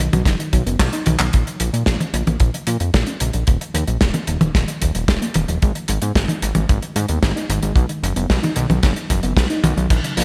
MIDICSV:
0, 0, Header, 1, 4, 480
1, 0, Start_track
1, 0, Tempo, 535714
1, 1193, Time_signature, 4, 2, 24, 8
1, 9178, End_track
2, 0, Start_track
2, 0, Title_t, "Synth arpeggio sound"
2, 0, Program_c, 0, 84
2, 113, Note_on_c, 0, 54, 101
2, 181, Note_off_c, 0, 54, 0
2, 352, Note_on_c, 0, 51, 75
2, 455, Note_off_c, 0, 51, 0
2, 473, Note_on_c, 0, 54, 96
2, 514, Note_off_c, 0, 54, 0
2, 595, Note_on_c, 0, 59, 78
2, 662, Note_off_c, 0, 59, 0
2, 834, Note_on_c, 0, 63, 100
2, 874, Note_off_c, 0, 63, 0
2, 953, Note_on_c, 0, 51, 103
2, 1021, Note_off_c, 0, 51, 0
2, 1073, Note_on_c, 0, 54, 101
2, 1141, Note_off_c, 0, 54, 0
2, 1314, Note_on_c, 0, 49, 75
2, 1416, Note_off_c, 0, 49, 0
2, 1434, Note_on_c, 0, 53, 98
2, 1474, Note_off_c, 0, 53, 0
2, 1554, Note_on_c, 0, 58, 75
2, 1622, Note_off_c, 0, 58, 0
2, 1794, Note_on_c, 0, 61, 98
2, 1834, Note_off_c, 0, 61, 0
2, 1914, Note_on_c, 0, 49, 99
2, 1982, Note_off_c, 0, 49, 0
2, 2033, Note_on_c, 0, 53, 104
2, 2101, Note_off_c, 0, 53, 0
2, 2271, Note_on_c, 0, 49, 76
2, 2374, Note_off_c, 0, 49, 0
2, 2391, Note_on_c, 0, 53, 96
2, 2433, Note_off_c, 0, 53, 0
2, 2511, Note_on_c, 0, 58, 77
2, 2580, Note_off_c, 0, 58, 0
2, 2751, Note_on_c, 0, 61, 101
2, 2793, Note_off_c, 0, 61, 0
2, 2874, Note_on_c, 0, 49, 102
2, 2942, Note_off_c, 0, 49, 0
2, 2994, Note_on_c, 0, 53, 101
2, 3062, Note_off_c, 0, 53, 0
2, 3234, Note_on_c, 0, 51, 73
2, 3336, Note_off_c, 0, 51, 0
2, 3354, Note_on_c, 0, 53, 98
2, 3395, Note_off_c, 0, 53, 0
2, 3474, Note_on_c, 0, 54, 77
2, 3542, Note_off_c, 0, 54, 0
2, 3713, Note_on_c, 0, 58, 100
2, 3754, Note_off_c, 0, 58, 0
2, 3833, Note_on_c, 0, 51, 100
2, 3901, Note_off_c, 0, 51, 0
2, 3951, Note_on_c, 0, 53, 102
2, 4020, Note_off_c, 0, 53, 0
2, 4191, Note_on_c, 0, 51, 76
2, 4294, Note_off_c, 0, 51, 0
2, 4310, Note_on_c, 0, 53, 98
2, 4353, Note_off_c, 0, 53, 0
2, 4431, Note_on_c, 0, 54, 77
2, 4500, Note_off_c, 0, 54, 0
2, 4673, Note_on_c, 0, 58, 103
2, 4714, Note_off_c, 0, 58, 0
2, 4793, Note_on_c, 0, 51, 105
2, 4861, Note_off_c, 0, 51, 0
2, 4914, Note_on_c, 0, 53, 100
2, 4982, Note_off_c, 0, 53, 0
2, 5155, Note_on_c, 0, 51, 73
2, 5256, Note_off_c, 0, 51, 0
2, 5274, Note_on_c, 0, 56, 100
2, 5315, Note_off_c, 0, 56, 0
2, 5395, Note_on_c, 0, 59, 77
2, 5462, Note_off_c, 0, 59, 0
2, 5634, Note_on_c, 0, 63, 102
2, 5675, Note_off_c, 0, 63, 0
2, 5753, Note_on_c, 0, 51, 100
2, 5821, Note_off_c, 0, 51, 0
2, 5874, Note_on_c, 0, 56, 103
2, 5941, Note_off_c, 0, 56, 0
2, 6112, Note_on_c, 0, 51, 77
2, 6215, Note_off_c, 0, 51, 0
2, 6232, Note_on_c, 0, 56, 101
2, 6274, Note_off_c, 0, 56, 0
2, 6354, Note_on_c, 0, 59, 79
2, 6422, Note_off_c, 0, 59, 0
2, 6595, Note_on_c, 0, 63, 103
2, 6635, Note_off_c, 0, 63, 0
2, 6712, Note_on_c, 0, 51, 106
2, 6781, Note_off_c, 0, 51, 0
2, 6832, Note_on_c, 0, 56, 99
2, 6901, Note_off_c, 0, 56, 0
2, 7072, Note_on_c, 0, 51, 76
2, 7175, Note_off_c, 0, 51, 0
2, 7191, Note_on_c, 0, 54, 97
2, 7233, Note_off_c, 0, 54, 0
2, 7312, Note_on_c, 0, 59, 81
2, 7381, Note_off_c, 0, 59, 0
2, 7552, Note_on_c, 0, 63, 102
2, 7593, Note_off_c, 0, 63, 0
2, 7671, Note_on_c, 0, 51, 98
2, 7740, Note_off_c, 0, 51, 0
2, 7791, Note_on_c, 0, 54, 100
2, 7860, Note_off_c, 0, 54, 0
2, 8030, Note_on_c, 0, 51, 75
2, 8134, Note_off_c, 0, 51, 0
2, 8150, Note_on_c, 0, 54, 100
2, 8192, Note_off_c, 0, 54, 0
2, 8271, Note_on_c, 0, 59, 80
2, 8340, Note_off_c, 0, 59, 0
2, 8513, Note_on_c, 0, 63, 101
2, 8554, Note_off_c, 0, 63, 0
2, 8632, Note_on_c, 0, 51, 101
2, 8701, Note_off_c, 0, 51, 0
2, 8751, Note_on_c, 0, 54, 100
2, 8820, Note_off_c, 0, 54, 0
2, 8991, Note_on_c, 0, 49, 77
2, 9094, Note_off_c, 0, 49, 0
2, 9111, Note_on_c, 0, 53, 100
2, 9153, Note_off_c, 0, 53, 0
2, 9178, End_track
3, 0, Start_track
3, 0, Title_t, "Analog synth bass"
3, 0, Program_c, 1, 38
3, 115, Note_on_c, 1, 35, 80
3, 204, Note_off_c, 1, 35, 0
3, 228, Note_on_c, 1, 30, 101
3, 321, Note_off_c, 1, 30, 0
3, 475, Note_on_c, 1, 35, 91
3, 564, Note_off_c, 1, 35, 0
3, 594, Note_on_c, 1, 30, 80
3, 684, Note_off_c, 1, 30, 0
3, 712, Note_on_c, 1, 35, 102
3, 803, Note_off_c, 1, 35, 0
3, 954, Note_on_c, 1, 35, 92
3, 1044, Note_off_c, 1, 35, 0
3, 1072, Note_on_c, 1, 35, 81
3, 1163, Note_off_c, 1, 35, 0
3, 1200, Note_on_c, 1, 34, 102
3, 1287, Note_off_c, 1, 34, 0
3, 1434, Note_on_c, 1, 34, 93
3, 1524, Note_off_c, 1, 34, 0
3, 1553, Note_on_c, 1, 46, 80
3, 1644, Note_off_c, 1, 46, 0
3, 1675, Note_on_c, 1, 34, 101
3, 1764, Note_off_c, 1, 34, 0
3, 1912, Note_on_c, 1, 34, 93
3, 2003, Note_off_c, 1, 34, 0
3, 2033, Note_on_c, 1, 34, 77
3, 2124, Note_off_c, 1, 34, 0
3, 2152, Note_on_c, 1, 34, 101
3, 2243, Note_off_c, 1, 34, 0
3, 2394, Note_on_c, 1, 46, 93
3, 2484, Note_off_c, 1, 46, 0
3, 2512, Note_on_c, 1, 41, 80
3, 2603, Note_off_c, 1, 41, 0
3, 2634, Note_on_c, 1, 34, 103
3, 2724, Note_off_c, 1, 34, 0
3, 2874, Note_on_c, 1, 34, 94
3, 2964, Note_off_c, 1, 34, 0
3, 2993, Note_on_c, 1, 34, 79
3, 3084, Note_off_c, 1, 34, 0
3, 3115, Note_on_c, 1, 27, 97
3, 3204, Note_off_c, 1, 27, 0
3, 3352, Note_on_c, 1, 39, 91
3, 3443, Note_off_c, 1, 39, 0
3, 3473, Note_on_c, 1, 34, 82
3, 3563, Note_off_c, 1, 34, 0
3, 3596, Note_on_c, 1, 27, 100
3, 3685, Note_off_c, 1, 27, 0
3, 3833, Note_on_c, 1, 27, 90
3, 3923, Note_off_c, 1, 27, 0
3, 3953, Note_on_c, 1, 27, 77
3, 4044, Note_off_c, 1, 27, 0
3, 4075, Note_on_c, 1, 27, 100
3, 4164, Note_off_c, 1, 27, 0
3, 4320, Note_on_c, 1, 27, 95
3, 4407, Note_off_c, 1, 27, 0
3, 4435, Note_on_c, 1, 27, 80
3, 4525, Note_off_c, 1, 27, 0
3, 4553, Note_on_c, 1, 27, 103
3, 4643, Note_off_c, 1, 27, 0
3, 4796, Note_on_c, 1, 27, 94
3, 4885, Note_off_c, 1, 27, 0
3, 4916, Note_on_c, 1, 27, 78
3, 5005, Note_off_c, 1, 27, 0
3, 5041, Note_on_c, 1, 32, 100
3, 5127, Note_off_c, 1, 32, 0
3, 5275, Note_on_c, 1, 32, 94
3, 5364, Note_off_c, 1, 32, 0
3, 5395, Note_on_c, 1, 44, 83
3, 5484, Note_off_c, 1, 44, 0
3, 5514, Note_on_c, 1, 32, 102
3, 5604, Note_off_c, 1, 32, 0
3, 5755, Note_on_c, 1, 32, 95
3, 5845, Note_off_c, 1, 32, 0
3, 5874, Note_on_c, 1, 32, 82
3, 5964, Note_off_c, 1, 32, 0
3, 5997, Note_on_c, 1, 32, 104
3, 6086, Note_off_c, 1, 32, 0
3, 6235, Note_on_c, 1, 44, 94
3, 6324, Note_off_c, 1, 44, 0
3, 6354, Note_on_c, 1, 39, 78
3, 6444, Note_off_c, 1, 39, 0
3, 6474, Note_on_c, 1, 32, 106
3, 6564, Note_off_c, 1, 32, 0
3, 6714, Note_on_c, 1, 32, 94
3, 6804, Note_off_c, 1, 32, 0
3, 6832, Note_on_c, 1, 32, 84
3, 6923, Note_off_c, 1, 32, 0
3, 6949, Note_on_c, 1, 35, 99
3, 7041, Note_off_c, 1, 35, 0
3, 7193, Note_on_c, 1, 30, 93
3, 7283, Note_off_c, 1, 30, 0
3, 7314, Note_on_c, 1, 30, 84
3, 7404, Note_off_c, 1, 30, 0
3, 7435, Note_on_c, 1, 35, 101
3, 7525, Note_off_c, 1, 35, 0
3, 7674, Note_on_c, 1, 35, 93
3, 7764, Note_off_c, 1, 35, 0
3, 7793, Note_on_c, 1, 35, 81
3, 7884, Note_off_c, 1, 35, 0
3, 7915, Note_on_c, 1, 30, 100
3, 8004, Note_off_c, 1, 30, 0
3, 8154, Note_on_c, 1, 30, 97
3, 8244, Note_off_c, 1, 30, 0
3, 8274, Note_on_c, 1, 30, 80
3, 8364, Note_off_c, 1, 30, 0
3, 8391, Note_on_c, 1, 35, 104
3, 8483, Note_off_c, 1, 35, 0
3, 8632, Note_on_c, 1, 35, 96
3, 8723, Note_off_c, 1, 35, 0
3, 8754, Note_on_c, 1, 35, 82
3, 8844, Note_off_c, 1, 35, 0
3, 8874, Note_on_c, 1, 34, 101
3, 8964, Note_off_c, 1, 34, 0
3, 9113, Note_on_c, 1, 34, 99
3, 9178, Note_off_c, 1, 34, 0
3, 9178, End_track
4, 0, Start_track
4, 0, Title_t, "Drums"
4, 118, Note_on_c, 9, 42, 57
4, 119, Note_on_c, 9, 48, 79
4, 207, Note_off_c, 9, 42, 0
4, 208, Note_off_c, 9, 48, 0
4, 228, Note_on_c, 9, 36, 98
4, 233, Note_on_c, 9, 42, 84
4, 234, Note_on_c, 9, 38, 56
4, 318, Note_off_c, 9, 36, 0
4, 322, Note_off_c, 9, 42, 0
4, 323, Note_off_c, 9, 38, 0
4, 358, Note_on_c, 9, 42, 56
4, 448, Note_off_c, 9, 42, 0
4, 474, Note_on_c, 9, 42, 92
4, 475, Note_on_c, 9, 36, 61
4, 564, Note_off_c, 9, 42, 0
4, 565, Note_off_c, 9, 36, 0
4, 597, Note_on_c, 9, 42, 54
4, 687, Note_off_c, 9, 42, 0
4, 712, Note_on_c, 9, 36, 116
4, 712, Note_on_c, 9, 38, 110
4, 719, Note_on_c, 9, 39, 107
4, 721, Note_on_c, 9, 42, 83
4, 801, Note_off_c, 9, 38, 0
4, 802, Note_off_c, 9, 36, 0
4, 808, Note_off_c, 9, 39, 0
4, 811, Note_off_c, 9, 42, 0
4, 830, Note_on_c, 9, 42, 57
4, 920, Note_off_c, 9, 42, 0
4, 948, Note_on_c, 9, 42, 91
4, 958, Note_on_c, 9, 48, 75
4, 1038, Note_off_c, 9, 42, 0
4, 1047, Note_off_c, 9, 48, 0
4, 1068, Note_on_c, 9, 39, 78
4, 1078, Note_on_c, 9, 42, 61
4, 1157, Note_off_c, 9, 39, 0
4, 1168, Note_off_c, 9, 42, 0
4, 1192, Note_on_c, 9, 42, 67
4, 1200, Note_on_c, 9, 36, 106
4, 1281, Note_off_c, 9, 42, 0
4, 1289, Note_off_c, 9, 36, 0
4, 1318, Note_on_c, 9, 42, 51
4, 1407, Note_off_c, 9, 42, 0
4, 1432, Note_on_c, 9, 42, 96
4, 1522, Note_off_c, 9, 42, 0
4, 1557, Note_on_c, 9, 42, 57
4, 1647, Note_off_c, 9, 42, 0
4, 1668, Note_on_c, 9, 38, 126
4, 1675, Note_on_c, 9, 36, 124
4, 1675, Note_on_c, 9, 42, 80
4, 1758, Note_off_c, 9, 38, 0
4, 1764, Note_off_c, 9, 36, 0
4, 1764, Note_off_c, 9, 42, 0
4, 1795, Note_on_c, 9, 48, 51
4, 1797, Note_on_c, 9, 42, 59
4, 1885, Note_off_c, 9, 48, 0
4, 1886, Note_off_c, 9, 42, 0
4, 1915, Note_on_c, 9, 42, 102
4, 2005, Note_off_c, 9, 42, 0
4, 2035, Note_on_c, 9, 42, 53
4, 2038, Note_on_c, 9, 48, 69
4, 2124, Note_off_c, 9, 42, 0
4, 2127, Note_off_c, 9, 48, 0
4, 2148, Note_on_c, 9, 42, 83
4, 2153, Note_on_c, 9, 36, 112
4, 2237, Note_off_c, 9, 42, 0
4, 2243, Note_off_c, 9, 36, 0
4, 2277, Note_on_c, 9, 42, 55
4, 2367, Note_off_c, 9, 42, 0
4, 2390, Note_on_c, 9, 42, 106
4, 2480, Note_off_c, 9, 42, 0
4, 2510, Note_on_c, 9, 42, 55
4, 2600, Note_off_c, 9, 42, 0
4, 2633, Note_on_c, 9, 42, 75
4, 2634, Note_on_c, 9, 36, 105
4, 2636, Note_on_c, 9, 38, 120
4, 2722, Note_off_c, 9, 42, 0
4, 2723, Note_off_c, 9, 36, 0
4, 2726, Note_off_c, 9, 38, 0
4, 2746, Note_on_c, 9, 42, 54
4, 2836, Note_off_c, 9, 42, 0
4, 2870, Note_on_c, 9, 42, 104
4, 2959, Note_off_c, 9, 42, 0
4, 2987, Note_on_c, 9, 42, 53
4, 3077, Note_off_c, 9, 42, 0
4, 3108, Note_on_c, 9, 42, 77
4, 3115, Note_on_c, 9, 36, 115
4, 3198, Note_off_c, 9, 42, 0
4, 3205, Note_off_c, 9, 36, 0
4, 3236, Note_on_c, 9, 42, 55
4, 3326, Note_off_c, 9, 42, 0
4, 3356, Note_on_c, 9, 42, 100
4, 3446, Note_off_c, 9, 42, 0
4, 3472, Note_on_c, 9, 42, 54
4, 3562, Note_off_c, 9, 42, 0
4, 3591, Note_on_c, 9, 38, 121
4, 3594, Note_on_c, 9, 42, 75
4, 3597, Note_on_c, 9, 36, 123
4, 3680, Note_off_c, 9, 38, 0
4, 3683, Note_off_c, 9, 42, 0
4, 3687, Note_off_c, 9, 36, 0
4, 3708, Note_on_c, 9, 42, 51
4, 3710, Note_on_c, 9, 48, 54
4, 3798, Note_off_c, 9, 42, 0
4, 3800, Note_off_c, 9, 48, 0
4, 3829, Note_on_c, 9, 42, 87
4, 3918, Note_off_c, 9, 42, 0
4, 3950, Note_on_c, 9, 48, 76
4, 3952, Note_on_c, 9, 42, 50
4, 4040, Note_off_c, 9, 48, 0
4, 4041, Note_off_c, 9, 42, 0
4, 4075, Note_on_c, 9, 36, 109
4, 4075, Note_on_c, 9, 38, 65
4, 4077, Note_on_c, 9, 42, 71
4, 4164, Note_off_c, 9, 38, 0
4, 4165, Note_off_c, 9, 36, 0
4, 4166, Note_off_c, 9, 42, 0
4, 4194, Note_on_c, 9, 42, 51
4, 4284, Note_off_c, 9, 42, 0
4, 4315, Note_on_c, 9, 42, 96
4, 4320, Note_on_c, 9, 36, 60
4, 4404, Note_off_c, 9, 42, 0
4, 4410, Note_off_c, 9, 36, 0
4, 4434, Note_on_c, 9, 42, 57
4, 4523, Note_off_c, 9, 42, 0
4, 4553, Note_on_c, 9, 36, 127
4, 4553, Note_on_c, 9, 42, 75
4, 4558, Note_on_c, 9, 38, 124
4, 4643, Note_off_c, 9, 36, 0
4, 4643, Note_off_c, 9, 42, 0
4, 4648, Note_off_c, 9, 38, 0
4, 4678, Note_on_c, 9, 42, 55
4, 4768, Note_off_c, 9, 42, 0
4, 4787, Note_on_c, 9, 42, 95
4, 4798, Note_on_c, 9, 48, 68
4, 4876, Note_off_c, 9, 42, 0
4, 4887, Note_off_c, 9, 48, 0
4, 4913, Note_on_c, 9, 42, 58
4, 5003, Note_off_c, 9, 42, 0
4, 5037, Note_on_c, 9, 42, 66
4, 5040, Note_on_c, 9, 36, 119
4, 5127, Note_off_c, 9, 42, 0
4, 5130, Note_off_c, 9, 36, 0
4, 5154, Note_on_c, 9, 42, 53
4, 5244, Note_off_c, 9, 42, 0
4, 5269, Note_on_c, 9, 42, 98
4, 5358, Note_off_c, 9, 42, 0
4, 5391, Note_on_c, 9, 42, 55
4, 5480, Note_off_c, 9, 42, 0
4, 5514, Note_on_c, 9, 36, 118
4, 5518, Note_on_c, 9, 38, 126
4, 5518, Note_on_c, 9, 42, 78
4, 5604, Note_off_c, 9, 36, 0
4, 5608, Note_off_c, 9, 38, 0
4, 5608, Note_off_c, 9, 42, 0
4, 5630, Note_on_c, 9, 48, 60
4, 5637, Note_on_c, 9, 42, 61
4, 5719, Note_off_c, 9, 48, 0
4, 5726, Note_off_c, 9, 42, 0
4, 5756, Note_on_c, 9, 42, 99
4, 5846, Note_off_c, 9, 42, 0
4, 5868, Note_on_c, 9, 42, 57
4, 5868, Note_on_c, 9, 48, 74
4, 5957, Note_off_c, 9, 42, 0
4, 5958, Note_off_c, 9, 48, 0
4, 5996, Note_on_c, 9, 42, 74
4, 5998, Note_on_c, 9, 36, 127
4, 6086, Note_off_c, 9, 42, 0
4, 6087, Note_off_c, 9, 36, 0
4, 6115, Note_on_c, 9, 42, 50
4, 6205, Note_off_c, 9, 42, 0
4, 6235, Note_on_c, 9, 42, 102
4, 6324, Note_off_c, 9, 42, 0
4, 6348, Note_on_c, 9, 42, 57
4, 6438, Note_off_c, 9, 42, 0
4, 6474, Note_on_c, 9, 38, 117
4, 6475, Note_on_c, 9, 36, 127
4, 6477, Note_on_c, 9, 42, 70
4, 6564, Note_off_c, 9, 38, 0
4, 6565, Note_off_c, 9, 36, 0
4, 6567, Note_off_c, 9, 42, 0
4, 6603, Note_on_c, 9, 42, 53
4, 6692, Note_off_c, 9, 42, 0
4, 6717, Note_on_c, 9, 42, 99
4, 6807, Note_off_c, 9, 42, 0
4, 6832, Note_on_c, 9, 42, 57
4, 6922, Note_off_c, 9, 42, 0
4, 6949, Note_on_c, 9, 36, 117
4, 6958, Note_on_c, 9, 42, 70
4, 7039, Note_off_c, 9, 36, 0
4, 7048, Note_off_c, 9, 42, 0
4, 7072, Note_on_c, 9, 42, 52
4, 7161, Note_off_c, 9, 42, 0
4, 7200, Note_on_c, 9, 42, 86
4, 7290, Note_off_c, 9, 42, 0
4, 7313, Note_on_c, 9, 42, 56
4, 7403, Note_off_c, 9, 42, 0
4, 7435, Note_on_c, 9, 38, 110
4, 7436, Note_on_c, 9, 36, 110
4, 7436, Note_on_c, 9, 42, 74
4, 7524, Note_off_c, 9, 38, 0
4, 7526, Note_off_c, 9, 36, 0
4, 7526, Note_off_c, 9, 42, 0
4, 7557, Note_on_c, 9, 42, 51
4, 7563, Note_on_c, 9, 48, 58
4, 7647, Note_off_c, 9, 42, 0
4, 7653, Note_off_c, 9, 48, 0
4, 7668, Note_on_c, 9, 42, 96
4, 7757, Note_off_c, 9, 42, 0
4, 7793, Note_on_c, 9, 48, 80
4, 7799, Note_on_c, 9, 42, 52
4, 7883, Note_off_c, 9, 48, 0
4, 7889, Note_off_c, 9, 42, 0
4, 7910, Note_on_c, 9, 42, 80
4, 7913, Note_on_c, 9, 38, 60
4, 7914, Note_on_c, 9, 36, 124
4, 7999, Note_off_c, 9, 42, 0
4, 8003, Note_off_c, 9, 38, 0
4, 8004, Note_off_c, 9, 36, 0
4, 8030, Note_on_c, 9, 42, 53
4, 8120, Note_off_c, 9, 42, 0
4, 8154, Note_on_c, 9, 36, 62
4, 8154, Note_on_c, 9, 42, 103
4, 8243, Note_off_c, 9, 36, 0
4, 8243, Note_off_c, 9, 42, 0
4, 8269, Note_on_c, 9, 42, 53
4, 8359, Note_off_c, 9, 42, 0
4, 8392, Note_on_c, 9, 36, 112
4, 8397, Note_on_c, 9, 38, 116
4, 8399, Note_on_c, 9, 42, 68
4, 8481, Note_off_c, 9, 36, 0
4, 8487, Note_off_c, 9, 38, 0
4, 8488, Note_off_c, 9, 42, 0
4, 8512, Note_on_c, 9, 42, 53
4, 8602, Note_off_c, 9, 42, 0
4, 8634, Note_on_c, 9, 48, 74
4, 8635, Note_on_c, 9, 42, 92
4, 8723, Note_off_c, 9, 48, 0
4, 8725, Note_off_c, 9, 42, 0
4, 8758, Note_on_c, 9, 42, 53
4, 8848, Note_off_c, 9, 42, 0
4, 8871, Note_on_c, 9, 49, 93
4, 8873, Note_on_c, 9, 36, 112
4, 8874, Note_on_c, 9, 42, 86
4, 8961, Note_off_c, 9, 49, 0
4, 8963, Note_off_c, 9, 36, 0
4, 8963, Note_off_c, 9, 42, 0
4, 8998, Note_on_c, 9, 42, 66
4, 9088, Note_off_c, 9, 42, 0
4, 9114, Note_on_c, 9, 46, 116
4, 9178, Note_off_c, 9, 46, 0
4, 9178, End_track
0, 0, End_of_file